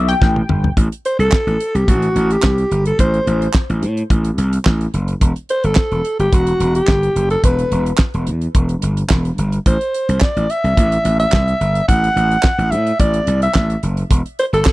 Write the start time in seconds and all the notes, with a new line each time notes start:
Already playing: B1
0.08 G5, closed hi-hat
0.22 A1, kick, snare
0.36 high tom
0.49 G1, mid tom
0.64 floor tom
0.77 A1, kick, closed hi-hat
0.92 closed hi-hat
1.05 C5, closed hi-hat
1.19 C2 A4, closed hi-hat
1.32 kick, snare, clap
1.47 A1, closed hi-hat
1.60 closed hi-hat
1.75 C2 G4, closed hi-hat
1.88 A1 F#4, kick, closed hi-hat
2.02 closed hi-hat
2.16 A1, closed hi-hat
2.31 G4, closed hi-hat
2.43 C2, kick, snare, clap
2.58 closed hi-hat
2.71 G1, closed hi-hat
2.85 A4, closed hi-hat
2.99 A1 C5, kick, closed hi-hat
3.14 closed hi-hat
3.27 A1, closed hi-hat
3.42 closed hi-hat
3.54 kick, snare, clap
3.70 A1, closed hi-hat
3.82 A2, closed hi-hat
3.97 closed hi-hat
4.10 A1, kick, closed hi-hat
4.25 closed hi-hat
4.38 C2, closed hi-hat
4.53 closed hi-hat
4.65 A1, kick, snare, clap
4.81 closed hi-hat
4.94 F#1, closed hi-hat
5.08 closed hi-hat
5.21 E1, kick, closed hi-hat
5.36 closed hi-hat
5.49 C5, closed hi-hat
5.64 G1 A4, closed hi-hat
5.75 kick, snare, clap
5.91 E1, closed hi-hat
6.05 closed hi-hat
6.19 G1 G4, closed hi-hat
6.33 E1 F#4, kick, closed hi-hat
6.47 closed hi-hat
6.60 E1, closed hi-hat
6.75 G4, closed hi-hat
6.87 G1, kick, snare, clap
7.03 closed hi-hat
7.16 F#1, closed hi-hat
7.30 A4, closed hi-hat
7.44 E1 B4, kick, closed hi-hat
7.59 closed hi-hat
7.72 E1, closed hi-hat
7.86 closed hi-hat
7.98 kick, snare, clap
8.14 E1, closed hi-hat
8.27 E2, closed hi-hat
8.41 closed hi-hat
8.55 E1, kick, closed hi-hat
8.69 closed hi-hat
8.82 G1, closed hi-hat
8.97 closed hi-hat
9.10 E1, kick, snare, clap
9.25 closed hi-hat
9.38 G1, closed hi-hat
9.52 closed hi-hat
9.66 A1 C5, kick, closed hi-hat
9.81 closed hi-hat
9.94 closed hi-hat
10.09 C2, closed hi-hat
10.21 D5, kick, snare, clap
10.36 A1, closed hi-hat
10.50 E5, closed hi-hat
10.64 C2, closed hi-hat
10.77 A1, kick, closed hi-hat
10.92 closed hi-hat
11.05 A1, closed hi-hat
11.20 E5, closed hi-hat
11.32 C2, kick, snare, clap
11.48 closed hi-hat
11.61 G1, closed hi-hat
11.75 closed hi-hat
11.88 A1 F#5, kick, closed hi-hat
12.04 closed hi-hat
12.16 A1, closed hi-hat
12.31 closed hi-hat
12.43 kick, snare, clap
12.58 A1, closed hi-hat
12.71 A2 E5, closed hi-hat
12.87 closed hi-hat
12.99 A1 D5, kick, closed hi-hat
13.14 closed hi-hat
13.27 C2, closed hi-hat
13.42 E5, closed hi-hat
13.54 A1, kick, snare, clap
13.70 closed hi-hat
13.83 F#1, closed hi-hat
13.97 closed hi-hat
14.11 E1, kick, closed hi-hat
14.26 closed hi-hat
14.39 C5, closed hi-hat
14.53 G1 A4, closed hi-hat
14.65 kick, snare, clap